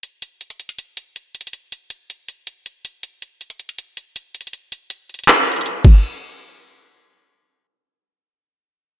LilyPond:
\new DrumStaff \with { instrumentName = "Drums" } \drummode { \time 4/4 \tempo 4 = 160 hh8 hh8 hh16 hh16 hh16 hh16 hh8 hh8 \tuplet 3/2 { hh16 r16 r16 hh16 hh16 hh16 } | hh8 hh8 hh8 hh8 hh8 hh8 hh8 hh8 | hh8 hh8 hh16 hh16 hh16 hh16 hh8 hh8 \tuplet 3/2 { hh16 r16 r16 hh16 hh16 hh16 } | hh8 hh8 hh8 hh32 hh32 hh32 hh32 <hc hh>8 hh32 hh32 hh32 hh32 hh8 <cymc bd>8 |
r4 r4 r4 r4 | r4 r4 r4 r4 | }